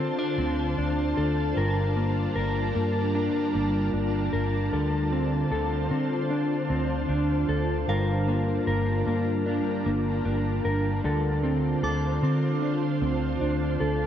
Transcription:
Already playing: D3 D4 F4 A4 C5 A5
0.00 C4
0.19 D4
0.39 D2 C4
0.78 D2 D4
1.17 D2 A4
1.57 G1 G2 G3 A#4
1.96 A#3
2.35 G1 A#4
2.75 G2 A#3
3.15 D4
3.54 G1 A#3
3.93 G1 D4
4.33 G1 A#4
4.72 D2 D3 F4 A4 C5
5.12 C4
5.51 D2 A4
5.91 D3 C4
6.30 D4
6.70 D2 C4
7.09 D2 D4
7.49 D2 A4
7.88 G1 G2 G3 A#4 F5
8.28 A#3
8.67 G1 A#4
9.07 G2 A#3
9.46 D4
9.86 G1 A#3
10.25 G1 D4
10.65 G1 A#4
11.04 D2 D3 F4 A4 C5
11.44 C4
11.83 D2 A4 D6
12.23 D3 C4
12.62 D4
13.02 D2 C4
13.41 D2 D4
13.80 D2 A4

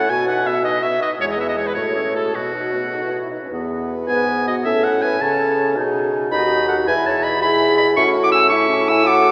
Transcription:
Already playing: A2 F#5
0.08 B2 B3 F#4 G#5
0.27 D#4 B4 F#5
0.45 B3 F#4 E5
0.63 D#4 B4 D#5
0.82 B3 F#4 E5
1.01 D#4 B4 D#5
1.19 E2 G#3 G#4 C#5
1.31 D#5
1.37 B3 B4 E5
1.48 D#5
1.57 G#3 G#4 C#5
1.66 B4
1.75 A2 A3 F#4 C#5
1.95 C#4 A4
2.15 A3 F#4 A4
2.33 B2 B3 F#4
2.54 D#4 B4
2.74 B3 F#4
2.94 D#4 B4
3.04 E4
3.12 F#4
3.21 E4
3.31 D#4 B4
3.41 C#4
3.51 E2 B3 B4
4.08 G#2 B3 B4 G#5
4.47 F#4 D#5
4.64 A2 C#4 A4 E5
4.84 A4 F#5
5.02 B4 G#5
5.20 C#3 C#4 A4 C#5 A5
5.76 B2 D#4 G#4
6.31 D#2 D#4 F#4 D#5 B5
6.68 A4 F#5
6.87 E2 E4 B4 G#5
7.05 C#5 A5
7.23 D#5 B5
7.42 E4 G#4 E5 B5
7.77 D#5 B5
7.96 A2 C#4 F#4 E5 C#6
8.16 E4
8.23 F#5 D6
8.32 C#4 G#5 E6
8.49 E4 E5 C#6
8.69 C#4
8.88 E4 G#5 E6
9.06 F#4 A4 F#5 D6
9.23 F#4

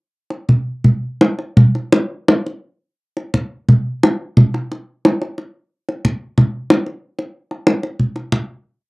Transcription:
0.30 kendang slap
0.49 kendang low
0.84 kendang low
1.21 kendang high
1.39 kendang slap
1.57 kendang low
1.75 kendang slap
1.92 kendang slap, kendang high
2.28 kendang high
2.46 kendang slap
3.17 kendang slap
3.34 kendang slap, kendang low
3.69 kendang low
4.03 kendang high
4.37 kendang low
4.54 kendang slap
4.72 kendang slap
5.05 kendang slap, kendang high
5.22 kendang slap
5.38 kendang slap
5.89 kendang slap
6.05 kendang slap, kendang low
6.38 kendang slap, kendang low
6.70 kendang slap, kendang high
6.86 kendang slap
7.19 kendang slap
7.51 kendang slap
7.67 kendang high
7.83 kendang slap
7.99 kendang low
8.16 kendang slap
8.32 kendang low

